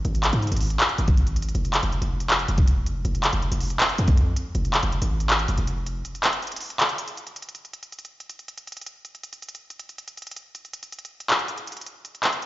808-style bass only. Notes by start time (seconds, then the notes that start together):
0.05 G#1
0.33 G#2
0.52 G#1
0.99 G#1
1.55 F1
1.83 F1
2.02 F1
2.49 F1
2.86 F#1
2.95 F1
3.05 F1
3.33 F1
3.52 F1
3.99 F2
4.55 F1
4.83 F1
5.02 G#1
5.49 F1
5.58 F1